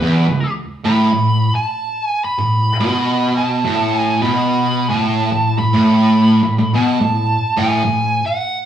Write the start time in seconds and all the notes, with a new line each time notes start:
Already playing: B4
0.01 E2
0.29 C#2
0.85 A2 B5
1.12 A2
1.55 A5
2.05 G#5
2.25 B5
2.38 A2
2.80 B2
3.38 A5
3.65 A2
3.97 G#5
4.22 B2 B5
4.89 A2 A5
5.32 A2
5.58 A2 B5
5.73 A2
6.43 A2
6.58 A2
6.74 B2 A5
7.00 A2
7.57 A2 G#5
7.84 A2
8.26 F#5